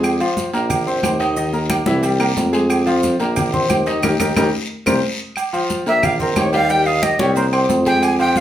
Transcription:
Already playing: F2 G#3 G#4 G#5
0.03 high conga, low agogo, long guiro, claves, maracas
0.20 F3 F4 F5, high conga, low agogo, maracas
0.37 high conga, short guiro, maracas
0.53 A#1 A#3 A#4 A#5, low agogo, short guiro, maracas
0.70 high conga, low conga, low agogo, long guiro, claves, maracas
0.87 C4 C5 C6, high conga, maracas
1.03 D#2, high conga, low timbale, low agogo, short guiro, claves, maracas
1.20 D#3 D#4 D#5, high conga, low agogo, short guiro, maracas
1.36 D#3 D#4 D#5, high conga, long guiro, maracas
1.53 A#3 A#4 A#5, high conga, maracas
1.70 high conga, low agogo, short guiro, claves, maracas
1.86 C2 E3 E4 E5, high conga, short guiro, maracas
2.03 G3 G4 G5, high conga, low agogo, long guiro, maracas
2.20 A#3 A#4 A#5, high conga, low agogo, claves, maracas
2.37 F2, high conga, low timbale, short guiro, maracas
2.53 G#3 G#4 G#5, low agogo, short guiro, maracas
2.70 high conga, low agogo, long guiro, claves, maracas
2.86 F3 F4 F5, high conga, low agogo, maracas
3.03 high conga, short guiro, maracas
3.20 A#1 A#3 A#4 A#5, low agogo, short guiro, maracas
3.36 high conga, low conga, low agogo, long guiro, claves, maracas
3.53 C4 C5 C6, high conga, low conga, maracas
3.69 D#2, high conga, low agogo, short guiro, claves, maracas
3.86 D#3 D#4 D#5, high conga, low agogo, short guiro, maracas
4.03 D#2 D#4 G4 A#4, high conga, high timbale, long guiro, claves, maracas
4.20 D#2 D#4 G4 A#4, high conga, high timbale, long guiro, claves, maracas
4.36 D#2 D#4 G4 A#4, high conga, high timbale, long guiro, claves, maracas
4.86 C2 G4 A#4 C5, high conga, high timbale, long guiro, claves, maracas
5.36 high conga, low agogo, long guiro, claves, maracas
5.53 F3 F4 F5, high conga, low agogo, maracas
5.69 high conga, short guiro, maracas
5.86 A#1 A#3 A#4 E5 A#5, low agogo, short guiro, maracas
6.03 F5, high conga, low conga, low agogo, long guiro, claves, maracas
6.20 C4 A#4 C5 C6, high conga, low conga, maracas
6.36 D#2 C#5, high conga, low timbale, low agogo, short guiro, claves, maracas
6.53 G3 G4 F5 G5, high conga, low agogo, short guiro, maracas
6.69 G3 G4 G5, high conga, long guiro, maracas
6.86 D#4 D#5 F5 D#6, high conga, maracas
7.03 D#5, high conga, low agogo, short guiro, claves, maracas
7.19 C2 G3 G4 C#5 G5, high conga, short guiro, maracas
7.35 A#3 A#4 C5 A#5, high conga, low agogo, long guiro, maracas
7.53 C4 C5 C6, high conga, low agogo, claves, maracas
7.68 F2, high conga, low timbale, short guiro, maracas
7.85 G#3 G#4 G5 G#5, high conga, low agogo, short guiro, maracas
8.02 G#5, high conga, low agogo, long guiro, claves, maracas
8.19 F3 F4 F5 G5, high conga, low agogo, maracas
8.36 high conga, short guiro, maracas

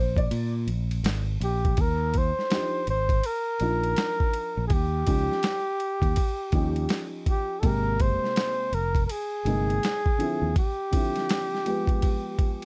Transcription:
Already playing: A#1 C5
0.17 D5, kick, ride
0.31 A#2, ride
0.67 A#1, ride
0.91 ride
1.03 G#1, snare, hi-hat pedal, ride
1.40 A#1 G4, ride
1.65 kick, ride
1.77 D#2 A#4, kick, ride
2.14 kick, ride
2.18 C5
2.39 snare
2.50 F3 D4 D#4 G4, snare, hi-hat pedal, ride
2.87 G#1 C5, ride
3.09 kick, ride
3.23 A#4, ride
3.60 A#1 F3 D4 D#4 F4, ride
3.83 ride
3.96 snare, hi-hat pedal, ride
4.20 kick
4.33 ride
4.57 A#1
4.67 D#2 G#4, kick, ride
4.73 G4
5.06 C#2 F3 C#4 D#4 G4, kick, ride
5.31 snare
5.43 snare, hi-hat pedal, ride
5.80 ride
6.02 D#2, kick, ride
6.16 kick, ride
6.52 D#2 F3 C#4 D#4 G4, kick, ride
6.76 ride
6.89 snare, hi-hat pedal, ride
7.26 G4, kick, ride
7.60 G#1 C3 G#3 A#3 A4, kick, ride
7.64 G4 A#4
8.00 C5, kick, ride
8.24 snare
8.36 snare, hi-hat pedal, ride
8.72 F1 A#4, ride
8.95 kick, ride
9.06 A#4, ride
9.11 G#4
9.45 G1 C3 G#3 A#3 D#4, ride
9.70 ride
9.83 snare, hi-hat pedal, ride
10.06 kick
10.18 D3 F3 C4 E4, ride
10.42 D#2
10.56 G4, kick, ride
10.91 D3 F3 C4 E4, kick, ride
11.16 snare, ride
11.29 snare, hi-hat pedal, ride
11.54 snare
11.65 F3 G#3 B3 G4, ride
11.87 kick, ride
12.02 kick, ride
12.39 kick, ride

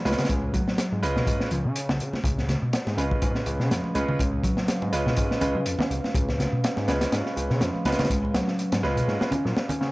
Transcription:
0.05 C#2 G#3 C#4 F4 B4, snare, closed hi-hat, high conga
0.12 snare, closed hi-hat
0.18 C#3, snare, closed hi-hat
0.24 snare, closed hi-hat
0.29 C#2 G#3, kick, closed hi-hat
0.54 F#3, kick, closed hi-hat, high conga
0.68 snare
0.78 snare, closed hi-hat
0.92 G#2
1.02 C#2 G#3 C#4 F4 B4, closed hi-hat
1.16 B2, snare
1.27 G#2, kick, closed hi-hat
1.40 snare
1.51 C#2 F3, closed hi-hat
1.65 B2 C#3
1.76 closed hi-hat
1.89 B1 C#3, snare
2.00 C#3, closed hi-hat
2.13 snare, high conga
2.24 C#2 C#4 B4 F5, kick, closed hi-hat
2.38 snare, muted conga
2.49 C#3, snare, closed hi-hat, high conga
2.62 B2
2.73 snare, closed hi-hat
2.87 G#2, snare, muted conga
2.97 C#2 G#3 C#4 F4 B4, closed hi-hat
3.11 kick
3.22 G#2, kick, closed hi-hat
3.35 snare
3.46 C#2, closed hi-hat
3.60 B2 C#3, snare
3.71 F2 F3, snare, closed hi-hat
3.84 high conga
3.95 C#2 G#3 C#4 F4 B4, closed hi-hat, high conga
4.08 C#3, low conga
4.19 C#2 G#3, kick, closed hi-hat
4.44 F#3, kick, closed hi-hat
4.57 snare
4.68 snare, closed hi-hat
4.82 G#2, muted conga
4.93 C#2 G#3 C#4 F4 B4, closed hi-hat
5.06 B2, snare
5.17 G#2, kick, closed hi-hat
5.31 snare
5.41 C#2 G#3 C#4 F4 B4, closed hi-hat, low conga
5.55 C#3 F#3
5.66 F2, closed hi-hat
5.79 C#4, snare, low conga
5.90 C#2, closed hi-hat
6.04 snare, high conga
6.14 C#2, kick, closed hi-hat
6.29 snare, muted conga
6.39 C#3, snare, closed hi-hat, high conga
6.53 B2
6.64 snare, closed hi-hat
6.77 G#2, snare, muted conga
6.88 C#2 G#3 C#4 F4 B4, snare, closed hi-hat
7.01 snare, closed hi-hat
7.12 G#2, snare, closed hi-hat
7.26 snare
7.36 C#2, closed hi-hat
7.50 B2 C#3, snare
7.61 F2 F3, snare, closed hi-hat
7.74 high conga
7.85 C#2 G#3 C#4 F4 B4, snare, closed hi-hat, high conga
7.92 snare, closed hi-hat
7.99 C#3, snare, closed hi-hat, low conga
8.04 snare, closed hi-hat
8.10 C#2 G#3, kick, closed hi-hat
8.25 muted conga
8.34 F#3, snare, closed hi-hat, high conga
8.48 snare
8.59 closed hi-hat
8.72 G#2, snare, closed hi-hat, muted conga
8.83 C#2 G#3 C#4 F4 B4, snare
8.96 B2, closed hi-hat
9.08 G#2, snare
9.21 snare
9.31 C#4, closed hi-hat, low conga
9.45 A#2 F#3, snare
9.57 snare
9.69 C#4, closed hi-hat, low conga
9.81 C#3, snare

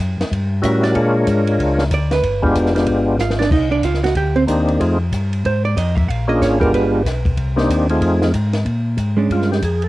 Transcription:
0.00 F#2
0.18 F#2, snare, ride
0.31 G2, kick, ride
0.62 A2 G3 C#4 E4 F#4 A#4 E5, kick, hi-hat pedal, ride
0.83 D5, snare, ride
0.94 A#2 G#3 D4 F4 A#4 C#5, kick, ride
1.27 G#2, kick, hi-hat pedal, ride
1.47 ride
1.59 C#2, kick, ride
1.79 snare
1.91 D2 D5, kick, hi-hat pedal, ride
2.11 B4, snare, ride
2.23 G1, kick, ride
2.42 G#3 B3 D4 F4 G4, kick
2.55 F1, kick, hi-hat pedal, ride
2.66 snare
2.74 G#3 B3 D4 F4 G4, snare, ride
2.86 G1, kick, ride
3.18 G#1 F4 F5, snare, hi-hat pedal
3.30 snare
3.39 D4 D5, snare
3.51 C2 D#4 D#5, kick, crash
3.71 D4 D5
3.83 C#2 F4 F5, kick, hi-hat pedal, ride
3.94 snare
4.04 F#4 F#5, snare, ride
4.15 D2 G4 G5, kick, ride
4.36 C4 C5
4.47 D#2 A#3 C4 D4 D#4 G4, kick, hi-hat pedal, ride
4.68 ride
4.79 F2 A3 C4 D#4 F4 G#4, kick, ride
5.12 G2, kick, hi-hat pedal, ride
5.33 ride
5.44 G#2 C5, kick, ride
5.65 D5
5.77 F2 D#5, kick, hi-hat pedal, ride
5.95 E5, kick, ride
6.08 A#1 F5, kick, ride
6.27 A#3 C#4 D4 F4 G#4 D#5
6.41 G#1 C#5, kick, snare, hi-hat pedal, ride
6.60 G#3 B3 D4 F4 G4 A#4, kick, ride
6.73 G1 B4, kick, ride
7.05 B1, kick, snare, hi-hat pedal, ride
7.25 kick, ride
7.37 C2, kick, ride
7.56 A#3 C4 D4 D#4 G4, snare
7.69 D#2, kick, hi-hat pedal, ride
7.89 A3 C4 D#4 F4 G#4, ride
8.01 F2, kick, ride
8.22 snare
8.33 G#2, kick, hi-hat pedal, ride
8.53 snare, ride
8.65 A#2, kick, ride
8.97 G#2, kick, hi-hat pedal, ride
9.17 G#3 C#4 D4
9.30 G2 F4, kick, ride
9.42 snare
9.52 G4, snare
9.62 F2 G#4, kick, hi-hat pedal, ride
9.82 A4, ride

